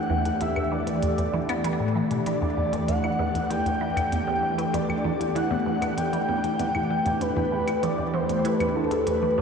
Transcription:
Already playing: analog synth pad E3 A3 D4 G4 D5, soft synth lead F#5
0.10 synth arpeggio sound E2
0.25 synth arpeggio sound E2, closed hi-hat
0.41 synth arpeggio sound E2, soft synth lead E5, closed hi-hat
0.56 synth arpeggio sound E2, claves
0.72 synth arpeggio sound E3, soft synth lead D5
0.87 synth arpeggio sound E2, closed hi-hat
1.03 synth arpeggio sound E2, closed hi-hat
1.18 synth arpeggio sound E2, closed hi-hat
1.34 synth arpeggio sound E3
1.49 synth arpeggio sound B3, closed hi-hat, claves
1.64 synth arpeggio sound E3, closed hi-hat
1.80 synth arpeggio sound A2
1.96 synth arpeggio sound E3
2.11 synth arpeggio sound B2, closed hi-hat
2.26 synth arpeggio sound E3, soft synth lead D5, closed hi-hat
2.42 synth arpeggio sound E2
2.57 synth arpeggio sound E2
2.73 synth arpeggio sound E2, closed hi-hat
2.88 synth arpeggio sound E2, soft synth lead F#5, closed hi-hat
3.04 synth arpeggio sound E3, claves
3.19 synth arpeggio sound E2
3.35 synth arpeggio sound E2, closed hi-hat
3.50 synth arpeggio sound E2, soft synth lead G5, closed hi-hat
3.66 synth arpeggio sound E2, closed hi-hat
3.81 synth arpeggio sound E3
3.96 synth arpeggio sound E2, closed hi-hat, claves
4.12 synth arpeggio sound E2, closed hi-hat
4.27 synth arpeggio sound E2
4.43 synth arpeggio sound E2
4.58 synth arpeggio sound E3, closed hi-hat
4.73 synth arpeggio sound E2, soft synth lead D5, closed hi-hat
4.89 synth arpeggio sound E2, claves
5.04 synth arpeggio sound E2
5.20 synth arpeggio sound E2, closed hi-hat
5.35 synth arpeggio sound E3, soft synth lead F#5, closed hi-hat
5.51 synth arpeggio sound E2
5.66 synth arpeggio sound E2
5.81 synth arpeggio sound E2, closed hi-hat, claves
5.97 synth arpeggio sound E2, soft synth lead G5, closed hi-hat
6.13 synth arpeggio sound E3, closed hi-hat
6.29 synth arpeggio sound E2
6.44 synth arpeggio sound E2, closed hi-hat
6.59 synth arpeggio sound E2, closed hi-hat
6.75 synth arpeggio sound E2, claves
6.90 synth arpeggio sound E3
7.06 synth arpeggio sound E2, closed hi-hat
7.21 synth arpeggio sound E2, soft synth lead B4, closed hi-hat
7.36 synth arpeggio sound E2
7.52 synth arpeggio sound E2
7.68 synth arpeggio sound E3, closed hi-hat, claves
7.83 synth arpeggio sound E2, soft synth lead D5, closed hi-hat
7.98 synth arpeggio sound E2
8.14 synth arpeggio sound E2, soft synth lead C5
8.29 synth arpeggio sound E2, closed hi-hat
8.45 synth arpeggio sound E3, soft synth lead B4, closed hi-hat
8.60 synth arpeggio sound E2, closed hi-hat, claves
8.76 synth arpeggio sound E2, soft synth lead A4
8.91 synth arpeggio sound E2, closed hi-hat
9.07 synth arpeggio sound E2, soft synth lead B4, closed hi-hat
9.22 synth arpeggio sound E3
9.38 synth arpeggio sound E2, soft synth lead C5

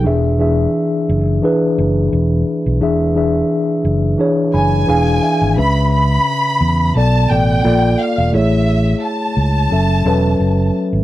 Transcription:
0.04 fingered electric bass E1, tine electric piano E3 D4 G#4 E5
0.39 tine electric piano E3 D4 G#4 E5
1.09 fingered electric bass F#1
1.42 tine electric piano E3 D4 G#4 B4
1.78 fingered electric bass F#1
2.13 fingered electric bass E1
2.66 fingered electric bass B1
2.81 fingered electric bass E1, tine electric piano E3 D4 G#4 E5
3.15 tine electric piano E3 D4 G#4 E5
3.85 fingered electric bass F#1
4.18 tine electric piano E3 D4 G#4 C#5
4.54 fingered electric bass F#1, violin section G#5, tine electric piano B5
4.87 fingered electric bass E1, tine electric piano E3 D4 G#4 F5 G#5
5.23 tine electric piano E5
5.41 fingered electric bass G#1
5.56 fingered electric bass C#2, tine electric piano C#3 C#4 B4 E5, violin section B5
5.93 violin section B5
6.61 fingered electric bass E2
6.94 fingered electric bass B1, tine electric piano B2 B3 A4 D5, violin section A5
7.29 fingered electric bass A1, tine electric piano B2 B3 A4 D5, violin section G5
7.63 fingered electric bass A#1, tine electric piano A#3 F4 A4 D5
8.01 violin section F5
8.18 fingered electric bass E1
8.32 fingered electric bass A1, tine electric piano A3 E4 G#4 C#5, violin section E5
9.05 violin section A5
9.37 fingered electric bass C#2
9.70 fingered electric bass F#1, tine electric piano F#3 C#4 A4 E5
10.05 fingered electric bass E1, tine electric piano F#3 C#4 A4 B4
10.40 fingered electric bass F#1
10.93 fingered electric bass G#1

